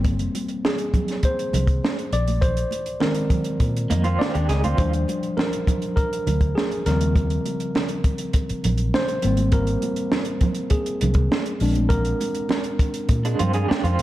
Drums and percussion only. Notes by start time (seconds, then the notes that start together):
0.04 kick, closed hi-hat, muted conga
0.19 closed hi-hat
0.35 closed hi-hat, muted conga
0.48 closed hi-hat
0.65 snare, high conga
0.78 closed hi-hat
0.94 kick, closed hi-hat, low conga
1.08 snare, closed hi-hat
1.23 kick, closed hi-hat
1.39 closed hi-hat
1.53 closed hi-hat, muted conga, low conga
1.67 kick, closed hi-hat
1.84 snare, high conga
1.99 closed hi-hat
2.13 closed hi-hat
2.27 closed hi-hat, high conga
2.42 kick, closed hi-hat, muted conga
2.57 closed hi-hat
2.71 closed hi-hat, muted conga
2.86 closed hi-hat
3.00 snare, high conga
3.15 closed hi-hat
3.30 kick, closed hi-hat, low conga
3.44 closed hi-hat
3.60 kick, closed hi-hat
3.77 closed hi-hat
3.90 closed hi-hat, muted conga, low conga
4.04 closed hi-hat
4.20 snare, high conga
4.35 closed hi-hat
4.49 snare, closed hi-hat
4.64 closed hi-hat, high conga
4.77 kick, closed hi-hat, muted conga
4.93 closed hi-hat
5.08 closed hi-hat, muted conga
5.23 closed hi-hat
5.37 snare, high conga
5.53 closed hi-hat
5.67 kick, closed hi-hat, low conga
5.82 closed hi-hat
5.97 kick, closed hi-hat, muted conga
6.13 closed hi-hat
6.27 closed hi-hat, muted conga, low conga
6.41 kick, closed hi-hat
6.57 snare, high conga
6.72 closed hi-hat
6.86 snare, closed hi-hat
7.01 closed hi-hat, high conga
7.16 kick, closed hi-hat, muted conga
7.30 closed hi-hat
7.46 closed hi-hat, muted conga
7.60 closed hi-hat
7.75 snare, high conga
7.89 closed hi-hat
8.04 kick, closed hi-hat
8.18 closed hi-hat
8.33 kick, closed hi-hat
8.49 closed hi-hat
8.64 closed hi-hat, muted conga, low conga
8.78 closed hi-hat
8.94 snare, high conga
9.08 closed hi-hat
9.22 closed hi-hat
9.37 closed hi-hat, high conga
9.52 kick, closed hi-hat, muted conga
9.67 closed hi-hat
9.82 closed hi-hat, muted conga
9.96 closed hi-hat
10.12 snare, high conga
10.25 closed hi-hat
10.41 kick, closed hi-hat, low conga
10.55 closed hi-hat
10.70 kick, closed hi-hat, muted conga
10.86 closed hi-hat
11.01 closed hi-hat, muted conga, low conga
11.14 kick, closed hi-hat
11.31 snare, high conga
11.46 closed hi-hat
11.60 open hi-hat
11.75 closed hi-hat, high conga
11.90 kick, closed hi-hat, muted conga
12.05 closed hi-hat
12.20 closed hi-hat, muted conga
12.35 closed hi-hat
12.49 snare, high conga
12.64 closed hi-hat
12.79 kick, closed hi-hat
12.94 closed hi-hat
13.09 kick, closed hi-hat, muted conga
13.25 closed hi-hat
13.39 closed hi-hat, muted conga, low conga
13.53 closed hi-hat
13.69 snare, high conga
13.85 closed hi-hat
13.99 closed hi-hat